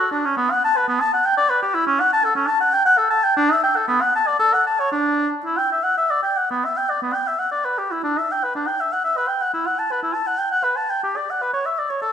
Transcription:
0.00 0.10 F#4 medium
0.11 0.27 D4 medium
0.25 0.36 C#4 medium
0.37 0.53 B3 medium
0.51 0.64 F#5 medium
0.64 0.78 A5 medium
0.77 0.88 B4 medium
0.88 1.02 B3 medium
1.00 1.12 A5 medium
1.13 1.27 F#5 medium
1.25 1.37 G5 medium
1.37 1.51 D5 medium
1.50 1.62 B4 medium
1.62 1.76 G4 medium
1.74 1.86 E4 medium
1.86 2.02 C#4 medium
2.00 2.11 F#5 medium
2.13 2.26 A5 medium
2.25 2.34 A4 medium
2.35 2.49 C#4 medium
2.47 2.60 A5 medium
2.61 2.75 F#5 medium
2.73 2.85 G5 medium
2.86 2.99 F#5 medium
2.98 3.10 A4 medium
3.10 3.25 A5 medium
3.24 3.36 G5 medium
3.37 3.53 D4 medium
3.52 3.63 E5 medium
3.63 3.78 G5 medium
3.76 3.87 A4 medium
3.88 4.03 B3 medium
4.01 4.14 F#5 medium
4.15 4.28 A5 medium
4.27 4.39 D5 medium
4.39 4.55 A4 medium
4.53 4.66 F#5 medium
4.67 4.81 A5 medium
4.80 4.91 C#5 medium
4.92 5.29 D4 medium
5.45 5.59 E4 medium
5.58 5.71 G5 medium
5.72 5.85 E5 medium
5.83 5.97 F#5 medium
5.97 6.12 E5 medium
6.10 6.22 D5 medium
6.23 6.38 G5 medium
6.37 6.50 F#5 medium
6.51 6.66 B3 soft
6.65 6.79 E5 soft
6.77 6.91 G5 medium
6.90 7.01 D5 soft
7.02 7.15 B3 soft
7.14 7.29 G5 soft
7.27 7.41 E5 soft
7.39 7.51 F#5 soft
7.51 7.66 D5 medium
7.65 7.80 B4 soft
7.78 7.93 G4 soft
7.91 8.03 E4 soft
8.03 8.20 D4 medium
8.18 8.33 E5 soft
8.32 8.45 G5 soft
8.44 8.54 B4 soft
8.55 8.69 D4 soft
8.67 8.82 G5 soft
8.80 8.94 E5 soft
8.92 9.03 F#5 soft
9.04 9.18 E5 medium
9.17 9.29 B4 medium
9.28 9.43 G5 soft
9.41 9.53 F#5 medium
9.53 9.68 E4 medium
9.67 9.80 F#5 medium
9.79 9.93 A5 soft
9.91 10.02 B4 soft
10.03 10.16 E4 soft
10.14 10.28 A5 soft
10.27 10.40 F#5 medium
10.39 10.51 G5 soft
10.51 10.65 F#5 medium
10.64 10.78 B4 medium
10.77 10.91 A5 medium
10.90 11.03 G5 medium
11.03 11.18 G4 medium
11.16 11.32 D5 soft
11.30 11.43 F#5 medium
11.42 11.53 B4 medium
11.53 11.67 C#5 medium
11.66 11.80 E5 medium
11.79 11.91 D5 medium
11.90 12.01 C#5 soft
12.02 12.12 A4 medium

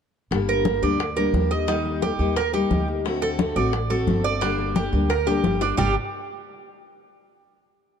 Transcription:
0.31 0.79 G1 medium
0.31 0.65 D3 medium
0.31 0.64 G3 medium
0.31 0.65 A#3 medium
0.31 0.65 D4 medium
0.31 0.66 G4 medium
0.31 high bongo medium
0.31 high conga soft
0.48 0.82 A#4 medium
0.48 high bongo soft
0.48 high conga soft
0.65 0.82 G3 soft
0.65 0.82 A#3 soft
0.65 0.82 D4 medium
0.65 0.81 G4 medium
0.65 high bongo medium
0.65 high conga medium
0.82 1.30 D2 medium
0.82 0.98 G3 medium
0.82 0.99 A#3 medium
0.82 0.99 D4 medium
0.82 0.99 G4 medium
0.82 1.16 D5 medium
0.82 high bongo soft
0.82 high conga soft
0.99 muted steel-string acoustic guitar stroke medium
0.99 high bongo medium
0.99 high conga soft
1.16 1.32 G3 medium
1.16 1.33 A#3 medium
1.16 1.33 D4 medium
1.16 1.33 G4 medium
1.16 1.50 A#4 medium
1.16 high conga soft
1.33 2.14 D#2 medium
1.33 1.67 G3 soft
1.33 1.67 A#3 soft
1.33 1.68 D4 medium
1.33 1.68 G4 medium
1.33 high bongo soft
1.33 low bongo medium
1.33 high conga medium
1.51 1.68 D#5 medium
1.51 high bongo soft
1.51 high conga soft
1.67 2.01 D#3 medium
1.67 2.01 G3 medium
1.67 2.01 A#3 medium
1.67 2.01 D#4 medium
1.67 2.02 D#4 medium
1.67 2.02 G4 medium
1.67 high bongo medium
1.67 high conga soft
1.85 high bongo soft
1.85 high conga soft
2.02 2.19 G3 soft
2.02 2.19 A#3 soft
2.02 2.18 D#4 soft
2.02 2.36 G4 medium
2.02 2.18 G4 soft
2.02 high bongo medium
2.02 high conga medium
2.19 2.67 D#2 medium
2.19 2.36 G3 medium
2.19 2.36 A#3 medium
2.19 2.36 D#4 medium
2.19 2.36 G4 medium
2.19 high bongo soft
2.19 high conga soft
2.36 2.53 A#4 medium
2.36 muted steel-string acoustic guitar stroke medium
2.36 high bongo medium
2.36 high conga soft
2.53 2.69 G3 medium
2.53 2.70 A#3 medium
2.53 2.70 D#4 medium
2.53 2.70 G4 medium
2.53 2.87 G4 medium
2.53 high conga soft
2.71 3.50 D2 medium
2.71 3.04 G3 soft
2.71 3.04 A#3 soft
2.71 3.05 D#4 soft
2.71 3.05 G4 medium
2.71 high bongo soft
2.71 low bongo medium
2.71 high conga medium
2.88 high bongo soft
2.88 high conga soft
3.05 3.38 D3 medium
3.05 3.39 A3 medium
3.05 3.39 C4 medium
3.05 3.40 F#4 medium
3.05 high bongo medium
3.05 high conga soft
3.22 3.55 A4 medium
3.22 high bongo soft
3.22 high conga soft
3.39 3.56 D3 soft
3.39 3.56 A3 medium
3.39 3.56 C4 medium
3.39 3.55 F#4 medium
3.39 high bongo medium
3.39 high conga loud
3.56 4.04 A1 medium
3.56 3.72 A3 medium
3.56 3.73 C4 medium
3.56 3.73 F#4 medium
3.56 3.89 D5 medium
3.56 high bongo soft
3.56 high conga soft
3.73 muted steel-string acoustic guitar stroke medium
3.73 high bongo medium
3.73 high conga soft
3.90 4.07 A3 medium
3.90 4.07 C4 medium
3.90 4.07 F#4 medium
3.90 4.23 A4 medium
3.90 high conga soft
4.07 4.87 G1 medium
4.07 4.40 D3 soft
4.07 4.41 A3 medium
4.07 4.41 C4 soft
4.07 4.42 F#4 medium
4.07 high bongo soft
4.07 low bongo medium
4.07 high conga medium
4.24 4.41 D5 medium
4.24 high bongo soft
4.41 4.75 D3 medium
4.41 4.74 G3 medium
4.41 4.75 A#3 medium
4.41 4.75 D4 medium
4.41 4.76 G4 medium
4.41 high bongo medium
4.41 high conga soft
4.59 high bongo soft
4.59 high conga soft
4.75 4.92 G3 soft
4.75 4.92 A#3 soft
4.75 4.92 D4 medium
4.75 5.09 G4 medium
4.75 4.91 G4 medium
4.75 high bongo medium
4.75 high conga medium
4.92 5.41 D2 medium
4.92 5.09 G3 medium
4.92 5.09 A#3 medium
4.92 5.09 D4 medium
4.92 5.09 G4 medium
4.92 high bongo soft
4.92 high conga soft
5.10 5.26 A#4 medium
5.10 muted steel-string acoustic guitar stroke medium
5.10 high bongo medium
5.10 high conga soft
5.27 5.42 G3 medium
5.27 5.43 A#3 medium
5.27 5.44 D4 medium
5.27 5.43 G4 medium
5.27 5.60 G4 medium
5.27 high bongo medium
5.27 high conga soft
5.44 5.74 G1 medium
5.44 5.77 G3 soft
5.44 5.78 A#3 soft
5.44 5.78 D4 soft
5.44 5.78 G4 medium
5.44 low bongo medium
5.44 high conga medium
5.61 5.77 D4 medium
5.61 low bongo medium
5.77 5.94 G1 medium
5.77 5.92 G2 medium
5.77 5.92 D3 medium
5.77 5.94 G3 medium
5.77 5.92 G3 medium
5.77 5.92 A#3 medium
5.77 5.94 D4 medium
5.77 5.93 D4 medium
5.77 5.94 G4 medium
5.77 5.93 G4 medium
5.77 low bongo loud
5.77 low conga loud

